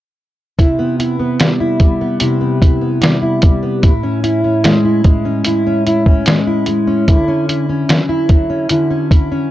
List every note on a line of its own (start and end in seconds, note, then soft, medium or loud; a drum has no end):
0.58 2.20 C3 medium
0.58 0.99 E4 medium
0.58 kick medium
0.58 closed hi-hat medium
0.79 1.18 B3 soft
0.99 1.60 E4 soft
0.99 closed hi-hat medium
1.19 2.00 B3 soft
1.40 1.79 G3 medium
1.40 snare medium
1.40 closed hi-hat medium
1.60 2.21 E4 medium
1.80 3.00 G3 medium
1.80 kick medium
1.80 closed hi-hat soft
2.01 2.40 B3 soft
2.20 3.91 C3 medium
2.20 2.61 E4 medium
2.20 closed hi-hat medium
2.41 2.80 B3 soft
2.61 3.22 E4 medium
2.61 kick medium
2.61 closed hi-hat medium
2.81 3.61 B3 medium
3.01 3.41 G3 medium
3.01 snare medium
3.01 closed hi-hat medium
3.22 3.83 E4 medium
3.42 3.91 G3 medium
3.42 kick medium
3.42 closed hi-hat medium
3.63 3.91 B3 medium
3.83 5.45 A2 medium
3.83 4.23 E4 medium
3.83 kick medium
3.83 closed hi-hat medium
4.03 4.44 C#4 medium
4.24 4.84 E4 medium
4.24 closed hi-hat medium
4.44 5.25 C#4 soft
4.64 5.04 G#3 medium
4.64 snare medium
4.64 closed hi-hat medium
4.85 5.46 E4 medium
5.04 6.26 G#3 soft
5.04 kick medium
5.04 closed hi-hat medium
5.25 5.66 C#4 soft
5.44 7.16 A2 medium
5.44 5.86 E4 medium
5.44 closed hi-hat medium
5.67 6.07 C#4 soft
5.87 6.47 E4 medium
5.87 closed hi-hat medium
6.06 6.87 C#4 medium
6.06 kick medium
6.26 6.66 G#3 medium
6.26 snare loud
6.26 closed hi-hat medium
6.47 7.08 E4 medium
6.66 7.16 G#3 medium
6.66 closed hi-hat medium
6.87 7.28 C#4 medium
7.08 8.69 D3 medium
7.08 7.48 E4 medium
7.08 kick medium
7.08 closed hi-hat medium
7.28 7.69 C#4 medium
7.49 8.09 E4 medium
7.49 closed hi-hat medium
7.69 8.49 C#4 soft
7.89 8.28 F#3 medium
7.89 snare medium
7.89 closed hi-hat medium
8.09 8.70 E4 medium
8.29 9.50 F#3 soft
8.29 kick medium
8.29 closed hi-hat medium
8.50 8.90 C#4 soft
8.69 9.51 D3 medium
8.69 9.11 E4 medium
8.69 closed hi-hat medium
8.91 9.31 C#4 soft
9.11 9.51 E4 medium
9.11 kick medium
9.11 closed hi-hat medium
9.32 9.51 C#4 medium